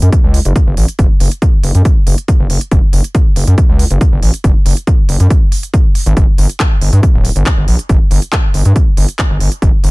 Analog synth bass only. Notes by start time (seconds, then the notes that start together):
0.02 F#2
0.24 C#2
0.45 F#1
0.67 F#1
0.77 A1
0.99 F#1
1.20 F#1
1.63 F#1
1.75 F#2
2.07 F#1
2.39 F#1
2.50 F#1
2.71 F#1
2.93 F#1
3.36 F#1
3.47 F#2
3.69 C#2
3.91 F#1
4.12 F#1
4.22 A1
4.44 F#1
4.66 F#1
5.09 F#1
5.20 F#2
6.06 G#1
6.17 G1
6.38 G1
6.82 G1
6.93 G2
7.14 D1
7.36 G1
7.57 G1
7.68 A#1
7.89 G1
8.11 G1
8.54 G1
8.65 G2
8.97 G1
9.30 G1
9.40 G1
9.62 G1
9.84 G1